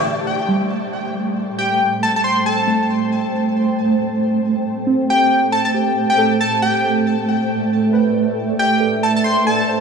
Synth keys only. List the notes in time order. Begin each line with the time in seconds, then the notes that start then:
0.48 G3
2.67 A3
4.87 C4
5.74 G4
6.18 A4
7.93 B4
8.80 A4
9.69 C5